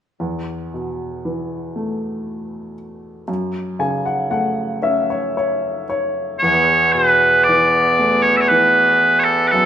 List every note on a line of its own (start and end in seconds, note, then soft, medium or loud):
0.20 3.24 E2 soft
0.74 2.74 B2 soft
1.25 3.24 E3 soft
1.76 3.24 A3 soft
3.28 6.35 F#2 soft
3.79 5.82 C#3 soft
3.79 4.03 G#5 medium
4.06 4.28 F#5 soft
4.31 6.36 A3 soft
4.31 4.78 F#5 medium
4.82 6.36 C#4 soft
4.82 5.06 E5 medium
5.10 5.33 C#5 soft
5.37 5.84 C#5 medium
5.90 6.37 C#5 medium
6.39 9.66 E2 medium
6.39 9.51 E2 soft
6.39 9.66 E3 medium
6.39 9.66 B3 medium
6.39 6.92 C#5 medium
6.92 8.99 B2 soft
6.92 7.44 B4 medium
7.44 8.22 D5 medium
7.49 8.49 E3 soft
7.99 9.49 A3 soft
8.22 8.37 C#5 medium
8.37 8.41 E5 soft
8.41 8.48 C#5 soft
8.48 9.50 E3 soft
8.48 9.19 B4 medium
9.19 9.24 C#5 soft
9.24 9.48 A4 soft
9.48 9.66 A4 medium
9.48 9.51 B4 medium
9.53 9.66 F#2 soft